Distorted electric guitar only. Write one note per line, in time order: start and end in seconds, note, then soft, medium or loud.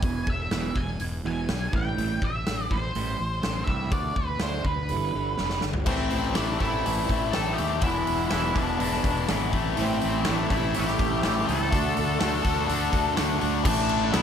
5.86 6.36 A2 medium
5.86 6.36 E3 loud
5.86 6.36 A3 medium
6.37 6.58 A2 medium
6.37 6.61 E3 medium
6.37 6.60 A3 medium
6.60 6.84 A2 medium
6.60 6.85 E3 medium
6.60 6.85 A3 medium
6.85 7.33 A2 medium
6.85 7.34 E3 medium
6.85 7.34 A3 loud
7.34 7.57 A2 medium
7.34 7.58 E3 medium
7.34 7.57 A3 medium
7.58 7.81 A2 medium
7.58 7.83 E3 medium
7.58 7.82 A3 medium
7.82 8.29 E2 medium
7.82 8.30 B2 loud
7.82 8.31 E3 loud
8.30 8.53 E2 medium
8.30 8.54 B2 medium
8.30 8.55 E3 medium
8.54 8.77 E2 medium
8.54 8.78 B2 medium
8.54 8.78 E3 medium
8.79 9.27 E2 medium
8.79 9.28 B2 medium
8.79 9.29 E3 loud
9.28 9.52 E2 medium
9.28 9.52 B2 medium
9.28 9.53 E3 medium
9.52 9.75 A2 medium
9.52 9.76 E3 loud
9.52 9.77 A3 loud
9.76 10.23 A2 medium
9.76 10.25 E3 loud
9.76 10.26 A3 medium
10.25 10.49 A2 medium
10.25 10.50 E3 medium
10.25 10.51 A3 medium
10.50 10.72 A2 medium
10.50 10.73 E3 medium
10.50 10.75 A3 medium
10.74 11.21 A2 medium
10.74 11.23 E3 medium
10.74 11.23 A3 loud
11.22 11.46 A2 medium
11.22 11.46 E3 medium
11.22 11.47 A3 medium
11.47 11.70 A2 medium
11.47 11.71 E3 medium
11.47 11.70 A3 medium
11.70 12.18 D3 medium
11.70 12.19 A3 loud
11.70 12.19 D4 loud
12.19 12.42 D3 medium
12.19 12.42 A3 medium
12.19 12.43 D4 medium
12.43 12.66 D3 medium
12.43 12.66 A3 loud
12.43 12.67 D4 medium
12.67 13.14 D3 medium
12.67 13.15 A3 medium
12.67 13.16 D4 loud
13.15 13.37 D3 medium
13.15 13.39 A3 loud
13.15 13.40 D4 medium
13.39 13.63 D3 medium
13.39 13.63 A3 medium
13.39 13.64 D4 medium
13.63 14.11 A2 loud
13.63 14.12 E3 loud
13.63 14.13 A3 loud
14.11 14.22 B2 medium
14.11 14.22 F#3 medium
14.11 14.22 B3 medium